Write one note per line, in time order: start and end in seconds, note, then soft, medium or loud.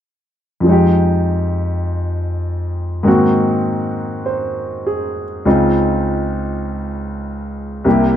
0.60 3.04 F2 soft
0.60 3.06 F3 soft
0.66 3.07 G#3 soft
0.66 3.09 D#4 soft
0.72 3.10 G4 soft
3.03 5.45 G#2 soft
3.03 5.45 D#3 soft
3.03 5.46 A#3 soft
3.03 5.45 C4 soft
3.08 5.47 F#4 medium
4.26 5.22 C5 soft
4.87 5.72 G#4 soft
5.45 7.85 C#2 soft
5.45 7.85 C#3 soft
5.45 7.86 C4 soft
5.45 7.86 D#4 soft
5.45 7.86 F4 soft
7.84 8.17 C2 soft
7.84 8.17 C3 soft
7.84 8.17 A#3 soft
7.84 8.17 E4 soft
7.84 8.17 G4 soft